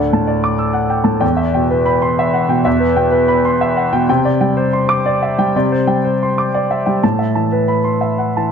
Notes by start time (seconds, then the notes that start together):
Already playing: D2 D5 F#5
0.13 A2 A5
0.27 D5
0.44 D6
0.58 E6
0.73 F#5
0.90 G5
1.04 A2 A5
1.20 E2 G5
1.37 E5
1.54 B2 G5
1.71 B4
1.86 B5
2.02 C6
2.19 E5
2.33 F#5
2.49 B2 G5
2.65 E2 E5
2.80 B4
2.96 B2 G5
3.11 B4
3.28 B5
3.45 C6
3.61 E5
3.76 F#5
3.93 B2 G5
4.09 C3 G5
4.25 D5
4.41 G3 G5
4.57 C5
4.73 C6
4.89 D6
5.06 D5
5.23 E5
5.38 G3 G5
5.56 C3 D5
5.72 C5
5.87 G3 G5
6.05 C5
6.23 C6
6.38 D6
6.55 D5
6.71 E5
6.86 G3 G5
7.03 A2 A5
7.19 E5
7.35 E3 A5
7.52 B4
7.68 B5
7.84 C6
8.01 E5
8.18 F#5
8.37 E3 A5